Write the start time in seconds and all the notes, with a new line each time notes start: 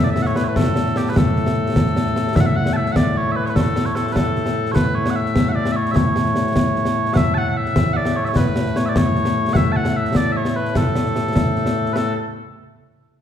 Already playing: A2 A3
0.04 D5
0.11 E5
0.16 snare
0.22 F#5, snare
0.27 C#5
0.36 B4, snare
0.44 C#5
0.48 B4
0.56 A4, concert bass drum, snare
0.76 snare
0.86 snare
0.96 G4, snare
1.06 B4, snare
1.16 A4, concert bass drum, snare
1.36 snare
1.46 snare
1.66 snare
1.76 concert bass drum, snare
1.86 snare
1.96 snare
2.07 snare
2.16 snare
2.36 E5, concert bass drum, snare
2.41 F#5
2.46 E5
2.56 F#5
2.66 snare
2.73 E5 A5
2.86 snare
2.92 F#5, concert bass drum, snare
2.96 D5
3.17 C#5
3.32 E5
3.36 B4
3.46 C#5, snare
3.50 B4
3.56 A4, concert bass drum, snare
3.76 snare
3.86 C#5, snare
3.96 A4, snare
4.12 A4 B4, concert bass drum, snare
4.36 snare
4.46 snare
4.66 snare
4.72 B4 C#5, concert bass drum, snare
4.95 C#5
5.06 snare
5.10 F#5
5.16 E5
5.26 snare
5.36 concert bass drum, snare
5.49 E5 F#5
5.56 D5
5.66 snare
5.72 C#5 E5
5.86 snare
5.91 E5
5.96 C#5, concert bass drum, snare
6.16 snare
6.26 snare
6.36 snare
6.56 concert bass drum, snare
6.76 snare
6.85 snare
7.06 snare
7.14 E5 F#5, concert bass drum, snare
7.34 F#5 A5
7.49 F#5
7.57 E5
7.66 snare
7.76 concert bass drum, snare
7.93 D5 F#5
8.05 snare
8.16 C#5
8.25 C#5 E5, snare
8.36 B4, concert bass drum, snare
8.56 snare
8.66 snare
8.76 C#5, snare
8.86 D5 E5
8.96 C#5, concert bass drum, snare
9.16 snare
9.25 snare
9.45 snare
9.53 E5 F#5, concert bass drum, snare
9.72 A5
9.76 F#5
9.85 snare
9.97 E5
10.05 snare
10.15 D5, concert bass drum, snare
10.32 E5
10.37 C#5
10.45 snare
10.56 B4
10.65 snare
10.75 A4, concert bass drum, snare
10.95 snare
11.06 snare
11.16 snare
11.36 concert bass drum, snare
11.56 snare
11.66 snare
11.86 snare
11.93 A4 B4, snare